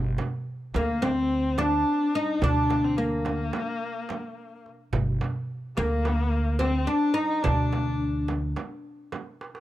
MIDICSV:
0, 0, Header, 1, 6, 480
1, 0, Start_track
1, 0, Tempo, 558659
1, 2082, Time_signature, 9, 3, 24, 8
1, 8249, End_track
2, 0, Start_track
2, 0, Title_t, "Oud"
2, 0, Program_c, 0, 24
2, 652, Note_on_c, 0, 58, 74
2, 874, Note_off_c, 0, 58, 0
2, 877, Note_on_c, 0, 60, 87
2, 1361, Note_on_c, 0, 62, 88
2, 1374, Note_off_c, 0, 60, 0
2, 1846, Note_off_c, 0, 62, 0
2, 1849, Note_on_c, 0, 63, 93
2, 2090, Note_off_c, 0, 63, 0
2, 2093, Note_on_c, 0, 62, 96
2, 2534, Note_off_c, 0, 62, 0
2, 2559, Note_on_c, 0, 58, 81
2, 3966, Note_off_c, 0, 58, 0
2, 4961, Note_on_c, 0, 58, 78
2, 5663, Note_on_c, 0, 60, 82
2, 5703, Note_off_c, 0, 58, 0
2, 5900, Note_off_c, 0, 60, 0
2, 5904, Note_on_c, 0, 62, 77
2, 6130, Note_off_c, 0, 62, 0
2, 6134, Note_on_c, 0, 63, 93
2, 6387, Note_off_c, 0, 63, 0
2, 6391, Note_on_c, 0, 62, 84
2, 7082, Note_off_c, 0, 62, 0
2, 8249, End_track
3, 0, Start_track
3, 0, Title_t, "Kamancheh"
3, 0, Program_c, 1, 110
3, 645, Note_on_c, 1, 58, 72
3, 888, Note_on_c, 1, 60, 73
3, 901, Note_off_c, 1, 58, 0
3, 1355, Note_on_c, 1, 62, 76
3, 1368, Note_off_c, 1, 60, 0
3, 1843, Note_on_c, 1, 63, 79
3, 1856, Note_off_c, 1, 62, 0
3, 2073, Note_on_c, 1, 62, 82
3, 2085, Note_off_c, 1, 63, 0
3, 2443, Note_on_c, 1, 60, 74
3, 2456, Note_off_c, 1, 62, 0
3, 2550, Note_on_c, 1, 58, 65
3, 2563, Note_off_c, 1, 60, 0
3, 3995, Note_off_c, 1, 58, 0
3, 4960, Note_on_c, 1, 58, 77
3, 5646, Note_off_c, 1, 58, 0
3, 5680, Note_on_c, 1, 60, 74
3, 5910, Note_on_c, 1, 62, 80
3, 5923, Note_off_c, 1, 60, 0
3, 6156, Note_on_c, 1, 63, 83
3, 6169, Note_off_c, 1, 62, 0
3, 6379, Note_on_c, 1, 62, 78
3, 6392, Note_off_c, 1, 63, 0
3, 7111, Note_off_c, 1, 62, 0
3, 8249, End_track
4, 0, Start_track
4, 0, Title_t, "Upright bass"
4, 0, Program_c, 2, 32
4, 0, Note_on_c, 2, 31, 90
4, 144, Note_off_c, 2, 31, 0
4, 641, Note_on_c, 2, 38, 99
4, 1567, Note_off_c, 2, 38, 0
4, 2082, Note_on_c, 2, 38, 92
4, 3007, Note_off_c, 2, 38, 0
4, 4236, Note_on_c, 2, 31, 96
4, 4460, Note_off_c, 2, 31, 0
4, 4965, Note_on_c, 2, 38, 96
4, 5889, Note_off_c, 2, 38, 0
4, 6413, Note_on_c, 2, 38, 94
4, 7334, Note_off_c, 2, 38, 0
4, 8249, End_track
5, 0, Start_track
5, 0, Title_t, "Darbuka"
5, 162, Note_on_c, 9, 63, 69
5, 248, Note_off_c, 9, 63, 0
5, 644, Note_on_c, 9, 63, 62
5, 730, Note_off_c, 9, 63, 0
5, 885, Note_on_c, 9, 63, 70
5, 971, Note_off_c, 9, 63, 0
5, 1124, Note_on_c, 9, 62, 24
5, 1209, Note_off_c, 9, 62, 0
5, 1362, Note_on_c, 9, 63, 60
5, 1448, Note_off_c, 9, 63, 0
5, 1835, Note_on_c, 9, 62, 25
5, 1921, Note_off_c, 9, 62, 0
5, 2077, Note_on_c, 9, 64, 92
5, 2163, Note_off_c, 9, 64, 0
5, 2318, Note_on_c, 9, 63, 64
5, 2404, Note_off_c, 9, 63, 0
5, 2793, Note_on_c, 9, 63, 64
5, 2879, Note_off_c, 9, 63, 0
5, 3035, Note_on_c, 9, 63, 72
5, 3121, Note_off_c, 9, 63, 0
5, 3274, Note_on_c, 9, 62, 26
5, 3360, Note_off_c, 9, 62, 0
5, 3514, Note_on_c, 9, 63, 62
5, 3600, Note_off_c, 9, 63, 0
5, 4003, Note_on_c, 9, 62, 29
5, 4089, Note_off_c, 9, 62, 0
5, 4237, Note_on_c, 9, 64, 87
5, 4323, Note_off_c, 9, 64, 0
5, 4478, Note_on_c, 9, 63, 77
5, 4564, Note_off_c, 9, 63, 0
5, 4956, Note_on_c, 9, 63, 69
5, 5042, Note_off_c, 9, 63, 0
5, 5199, Note_on_c, 9, 63, 77
5, 5285, Note_off_c, 9, 63, 0
5, 5440, Note_on_c, 9, 62, 26
5, 5526, Note_off_c, 9, 62, 0
5, 5674, Note_on_c, 9, 63, 65
5, 5760, Note_off_c, 9, 63, 0
5, 6166, Note_on_c, 9, 62, 25
5, 6252, Note_off_c, 9, 62, 0
5, 6401, Note_on_c, 9, 64, 100
5, 6487, Note_off_c, 9, 64, 0
5, 6643, Note_on_c, 9, 63, 71
5, 6729, Note_off_c, 9, 63, 0
5, 6881, Note_on_c, 9, 62, 26
5, 6967, Note_off_c, 9, 62, 0
5, 7121, Note_on_c, 9, 63, 61
5, 7207, Note_off_c, 9, 63, 0
5, 7358, Note_on_c, 9, 63, 70
5, 7444, Note_off_c, 9, 63, 0
5, 7838, Note_on_c, 9, 63, 66
5, 7924, Note_off_c, 9, 63, 0
5, 8086, Note_on_c, 9, 63, 57
5, 8172, Note_off_c, 9, 63, 0
5, 8204, Note_on_c, 9, 62, 60
5, 8249, Note_off_c, 9, 62, 0
5, 8249, End_track
6, 0, Start_track
6, 0, Title_t, "Frame drum"
6, 157, Note_on_c, 9, 64, 73
6, 243, Note_off_c, 9, 64, 0
6, 638, Note_on_c, 9, 64, 73
6, 724, Note_off_c, 9, 64, 0
6, 881, Note_on_c, 9, 64, 71
6, 967, Note_off_c, 9, 64, 0
6, 1356, Note_on_c, 9, 64, 73
6, 1442, Note_off_c, 9, 64, 0
6, 2077, Note_on_c, 9, 64, 84
6, 2163, Note_off_c, 9, 64, 0
6, 2324, Note_on_c, 9, 64, 67
6, 2410, Note_off_c, 9, 64, 0
6, 2799, Note_on_c, 9, 64, 67
6, 2885, Note_off_c, 9, 64, 0
6, 3034, Note_on_c, 9, 64, 67
6, 3120, Note_off_c, 9, 64, 0
6, 3524, Note_on_c, 9, 64, 62
6, 3610, Note_off_c, 9, 64, 0
6, 4234, Note_on_c, 9, 64, 84
6, 4319, Note_off_c, 9, 64, 0
6, 4477, Note_on_c, 9, 64, 58
6, 4563, Note_off_c, 9, 64, 0
6, 4961, Note_on_c, 9, 64, 58
6, 5047, Note_off_c, 9, 64, 0
6, 5201, Note_on_c, 9, 64, 62
6, 5287, Note_off_c, 9, 64, 0
6, 5675, Note_on_c, 9, 64, 61
6, 5761, Note_off_c, 9, 64, 0
6, 6395, Note_on_c, 9, 64, 80
6, 6481, Note_off_c, 9, 64, 0
6, 6638, Note_on_c, 9, 64, 61
6, 6724, Note_off_c, 9, 64, 0
6, 7117, Note_on_c, 9, 64, 58
6, 7203, Note_off_c, 9, 64, 0
6, 7361, Note_on_c, 9, 64, 61
6, 7447, Note_off_c, 9, 64, 0
6, 7841, Note_on_c, 9, 64, 60
6, 7927, Note_off_c, 9, 64, 0
6, 8249, End_track
0, 0, End_of_file